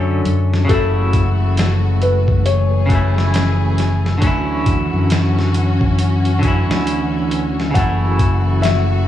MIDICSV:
0, 0, Header, 1, 6, 480
1, 0, Start_track
1, 0, Key_signature, 3, "minor"
1, 0, Tempo, 882353
1, 376, Time_signature, 4, 2, 24, 8
1, 4939, End_track
2, 0, Start_track
2, 0, Title_t, "Felt piano"
2, 0, Program_c, 0, 0
2, 0, Note_on_c, 0, 73, 111
2, 376, Note_on_c, 0, 69, 82
2, 396, Note_off_c, 0, 73, 0
2, 1102, Note_on_c, 0, 71, 88
2, 1118, Note_off_c, 0, 69, 0
2, 1322, Note_off_c, 0, 71, 0
2, 1336, Note_on_c, 0, 73, 85
2, 2034, Note_off_c, 0, 73, 0
2, 4213, Note_on_c, 0, 78, 98
2, 4673, Note_off_c, 0, 78, 0
2, 4689, Note_on_c, 0, 76, 96
2, 4939, Note_off_c, 0, 76, 0
2, 4939, End_track
3, 0, Start_track
3, 0, Title_t, "String section"
3, 0, Program_c, 1, 48
3, 369, Note_on_c, 1, 57, 66
3, 369, Note_on_c, 1, 66, 76
3, 370, Note_on_c, 1, 52, 72
3, 1323, Note_off_c, 1, 66, 0
3, 1335, Note_on_c, 1, 68, 85
3, 2273, Note_off_c, 1, 57, 0
3, 2286, Note_off_c, 1, 68, 0
3, 2298, Note_on_c, 1, 61, 73
3, 2302, Note_on_c, 1, 66, 83
3, 4198, Note_off_c, 1, 61, 0
3, 4200, Note_off_c, 1, 66, 0
3, 4216, Note_on_c, 1, 57, 69
3, 4217, Note_on_c, 1, 66, 86
3, 4939, Note_off_c, 1, 52, 0
3, 4939, Note_off_c, 1, 57, 0
3, 4939, Note_off_c, 1, 66, 0
3, 4939, End_track
4, 0, Start_track
4, 0, Title_t, "Clean electric guitar"
4, 0, Program_c, 2, 27
4, 0, Note_on_c, 2, 50, 83
4, 0, Note_on_c, 2, 54, 77
4, 0, Note_on_c, 2, 61, 77
4, 0, Note_on_c, 2, 69, 89
4, 343, Note_off_c, 2, 50, 0
4, 350, Note_off_c, 2, 54, 0
4, 352, Note_on_c, 2, 49, 87
4, 358, Note_off_c, 2, 61, 0
4, 367, Note_off_c, 2, 69, 0
4, 368, Note_on_c, 2, 54, 81
4, 384, Note_on_c, 2, 57, 77
4, 400, Note_on_c, 2, 64, 86
4, 1541, Note_off_c, 2, 49, 0
4, 1549, Note_off_c, 2, 54, 0
4, 1556, Note_on_c, 2, 49, 85
4, 1557, Note_off_c, 2, 57, 0
4, 1565, Note_off_c, 2, 64, 0
4, 1570, Note_on_c, 2, 54, 76
4, 1587, Note_on_c, 2, 57, 71
4, 1603, Note_on_c, 2, 64, 94
4, 2263, Note_off_c, 2, 49, 0
4, 2270, Note_off_c, 2, 54, 0
4, 2273, Note_on_c, 2, 50, 85
4, 2278, Note_off_c, 2, 57, 0
4, 2286, Note_off_c, 2, 64, 0
4, 2289, Note_on_c, 2, 54, 78
4, 2305, Note_on_c, 2, 61, 75
4, 2321, Note_on_c, 2, 64, 98
4, 3461, Note_off_c, 2, 50, 0
4, 3469, Note_off_c, 2, 54, 0
4, 3475, Note_on_c, 2, 50, 80
4, 3477, Note_off_c, 2, 61, 0
4, 3485, Note_off_c, 2, 64, 0
4, 3490, Note_on_c, 2, 54, 73
4, 3507, Note_on_c, 2, 61, 75
4, 3523, Note_on_c, 2, 64, 92
4, 4183, Note_off_c, 2, 50, 0
4, 4190, Note_off_c, 2, 54, 0
4, 4193, Note_on_c, 2, 49, 85
4, 4198, Note_off_c, 2, 61, 0
4, 4206, Note_off_c, 2, 64, 0
4, 4209, Note_on_c, 2, 54, 74
4, 4225, Note_on_c, 2, 57, 77
4, 4240, Note_on_c, 2, 64, 98
4, 4939, Note_off_c, 2, 49, 0
4, 4939, Note_off_c, 2, 54, 0
4, 4939, Note_off_c, 2, 57, 0
4, 4939, Note_off_c, 2, 64, 0
4, 4939, End_track
5, 0, Start_track
5, 0, Title_t, "Fingered electric bass"
5, 0, Program_c, 3, 33
5, 0, Note_on_c, 3, 42, 70
5, 114, Note_off_c, 3, 42, 0
5, 138, Note_on_c, 3, 42, 82
5, 354, Note_off_c, 3, 42, 0
5, 379, Note_on_c, 3, 30, 83
5, 2279, Note_off_c, 3, 30, 0
5, 2297, Note_on_c, 3, 38, 91
5, 2653, Note_off_c, 3, 38, 0
5, 2682, Note_on_c, 3, 42, 75
5, 3613, Note_off_c, 3, 42, 0
5, 3644, Note_on_c, 3, 38, 76
5, 4200, Note_off_c, 3, 38, 0
5, 4219, Note_on_c, 3, 30, 89
5, 4939, Note_off_c, 3, 30, 0
5, 4939, End_track
6, 0, Start_track
6, 0, Title_t, "Drums"
6, 138, Note_on_c, 9, 42, 67
6, 193, Note_off_c, 9, 42, 0
6, 291, Note_on_c, 9, 38, 51
6, 346, Note_off_c, 9, 38, 0
6, 377, Note_on_c, 9, 36, 99
6, 377, Note_on_c, 9, 42, 80
6, 432, Note_off_c, 9, 36, 0
6, 432, Note_off_c, 9, 42, 0
6, 616, Note_on_c, 9, 42, 65
6, 617, Note_on_c, 9, 36, 89
6, 671, Note_off_c, 9, 36, 0
6, 671, Note_off_c, 9, 42, 0
6, 856, Note_on_c, 9, 42, 85
6, 866, Note_on_c, 9, 38, 113
6, 910, Note_off_c, 9, 42, 0
6, 920, Note_off_c, 9, 38, 0
6, 1097, Note_on_c, 9, 42, 64
6, 1151, Note_off_c, 9, 42, 0
6, 1240, Note_on_c, 9, 36, 88
6, 1295, Note_off_c, 9, 36, 0
6, 1336, Note_on_c, 9, 42, 80
6, 1391, Note_off_c, 9, 42, 0
6, 1577, Note_on_c, 9, 36, 88
6, 1577, Note_on_c, 9, 42, 59
6, 1631, Note_off_c, 9, 36, 0
6, 1631, Note_off_c, 9, 42, 0
6, 1731, Note_on_c, 9, 38, 54
6, 1785, Note_off_c, 9, 38, 0
6, 1816, Note_on_c, 9, 42, 85
6, 1826, Note_on_c, 9, 38, 113
6, 1871, Note_off_c, 9, 42, 0
6, 1880, Note_off_c, 9, 38, 0
6, 2057, Note_on_c, 9, 42, 62
6, 2067, Note_on_c, 9, 38, 51
6, 2111, Note_off_c, 9, 42, 0
6, 2121, Note_off_c, 9, 38, 0
6, 2210, Note_on_c, 9, 38, 52
6, 2264, Note_off_c, 9, 38, 0
6, 2294, Note_on_c, 9, 42, 84
6, 2296, Note_on_c, 9, 36, 102
6, 2349, Note_off_c, 9, 42, 0
6, 2350, Note_off_c, 9, 36, 0
6, 2536, Note_on_c, 9, 36, 91
6, 2536, Note_on_c, 9, 42, 64
6, 2590, Note_off_c, 9, 42, 0
6, 2591, Note_off_c, 9, 36, 0
6, 2775, Note_on_c, 9, 42, 90
6, 2785, Note_on_c, 9, 38, 113
6, 2829, Note_off_c, 9, 42, 0
6, 2839, Note_off_c, 9, 38, 0
6, 2930, Note_on_c, 9, 38, 41
6, 2984, Note_off_c, 9, 38, 0
6, 3016, Note_on_c, 9, 42, 66
6, 3070, Note_off_c, 9, 42, 0
6, 3161, Note_on_c, 9, 36, 89
6, 3215, Note_off_c, 9, 36, 0
6, 3256, Note_on_c, 9, 42, 89
6, 3311, Note_off_c, 9, 42, 0
6, 3401, Note_on_c, 9, 42, 43
6, 3455, Note_off_c, 9, 42, 0
6, 3497, Note_on_c, 9, 36, 88
6, 3497, Note_on_c, 9, 42, 60
6, 3551, Note_off_c, 9, 36, 0
6, 3551, Note_off_c, 9, 42, 0
6, 3649, Note_on_c, 9, 38, 110
6, 3704, Note_off_c, 9, 38, 0
6, 3737, Note_on_c, 9, 42, 88
6, 3791, Note_off_c, 9, 42, 0
6, 3978, Note_on_c, 9, 42, 68
6, 4033, Note_off_c, 9, 42, 0
6, 4132, Note_on_c, 9, 38, 52
6, 4187, Note_off_c, 9, 38, 0
6, 4217, Note_on_c, 9, 36, 102
6, 4218, Note_on_c, 9, 42, 86
6, 4271, Note_off_c, 9, 36, 0
6, 4272, Note_off_c, 9, 42, 0
6, 4457, Note_on_c, 9, 36, 91
6, 4457, Note_on_c, 9, 42, 66
6, 4511, Note_off_c, 9, 36, 0
6, 4512, Note_off_c, 9, 42, 0
6, 4697, Note_on_c, 9, 42, 88
6, 4706, Note_on_c, 9, 38, 116
6, 4751, Note_off_c, 9, 42, 0
6, 4761, Note_off_c, 9, 38, 0
6, 4939, End_track
0, 0, End_of_file